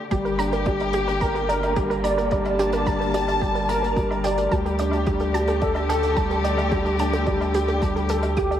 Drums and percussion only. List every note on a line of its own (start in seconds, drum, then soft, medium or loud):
0.11 kick medium
0.11 closed hi-hat medium
0.25 closed hi-hat soft
0.39 closed hi-hat medium
0.52 closed hi-hat soft
0.66 kick loud
0.66 closed hi-hat medium
0.80 closed hi-hat soft
0.80 low woodblock medium
0.93 closed hi-hat medium
1.08 closed hi-hat soft
1.21 kick loud
1.21 closed hi-hat medium
1.35 closed hi-hat soft
1.49 closed hi-hat medium
1.63 closed hi-hat soft
1.63 low woodblock medium
1.76 kick loud
1.76 closed hi-hat medium
1.91 closed hi-hat soft
2.05 closed hi-hat medium
2.18 closed hi-hat soft
2.31 kick loud
2.31 closed hi-hat medium
2.45 closed hi-hat soft
2.45 low woodblock medium
2.59 closed hi-hat medium
2.72 closed hi-hat medium
2.86 kick loud
2.86 closed hi-hat medium
3.01 closed hi-hat soft
3.14 closed hi-hat medium
3.28 closed hi-hat medium
3.28 low woodblock medium
3.41 kick loud
3.41 closed hi-hat medium
3.55 closed hi-hat soft
3.69 closed hi-hat medium
3.84 closed hi-hat medium
3.97 kick loud
3.97 closed hi-hat medium
4.11 closed hi-hat soft
4.11 low woodblock medium
4.24 closed hi-hat medium
4.38 closed hi-hat soft
4.52 kick loud
4.52 closed hi-hat medium
4.66 closed hi-hat soft
4.79 closed hi-hat medium
4.91 closed hi-hat soft
4.91 low woodblock medium
5.06 kick loud
5.06 closed hi-hat soft
5.20 closed hi-hat soft
5.34 closed hi-hat medium
5.47 closed hi-hat soft
5.61 kick loud
5.61 closed hi-hat medium
5.75 closed hi-hat soft
5.75 low woodblock medium
5.90 closed hi-hat medium
6.03 closed hi-hat medium
6.17 kick loud
6.17 closed hi-hat medium
6.31 closed hi-hat soft
6.44 closed hi-hat medium
6.58 closed hi-hat soft
6.58 low woodblock medium
6.72 kick loud
6.72 closed hi-hat medium
6.85 closed hi-hat soft
6.99 closed hi-hat medium
7.13 closed hi-hat soft
7.26 kick loud
7.26 closed hi-hat soft
7.41 closed hi-hat soft
7.41 low woodblock medium
7.54 closed hi-hat medium
7.68 closed hi-hat soft
7.82 kick loud
7.82 closed hi-hat medium
7.96 closed hi-hat soft
8.09 closed hi-hat medium
8.23 closed hi-hat medium
8.23 low woodblock medium
8.36 kick loud
8.36 closed hi-hat medium
8.51 closed hi-hat soft